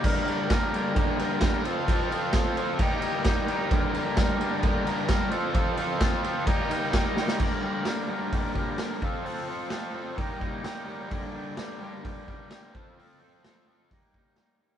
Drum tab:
CC |x---------------|----------------|----------------|----------------|
RD |--x-x-x-x-x-x-x-|x-x-x-x-x-x-x-x-|x-x-x-x-x-x-x-x-|x-x-x-x-x-x-x---|
HH |----------------|----------------|----------------|----------------|
SD |----o-------o---|----o-------o---|----o-------o---|----o-------o-oo|
BD |o---o---o---o---|o---o---o---o---|o---o---o---o---|o---o---o---o---|

CC |x---------------|----------------|----------------|----------------|
RD |----------------|----------------|----------------|----------------|
HH |----o---o---o---|o---o---o---o---|o---o---o---o---|o---o---o---o---|
SD |----o-------o---|----o-------o---|----o-------o---|----o-------o---|
BD |o-------o-o---o-|--------o-o-----|o-------o-o---o-|--------o-o-----|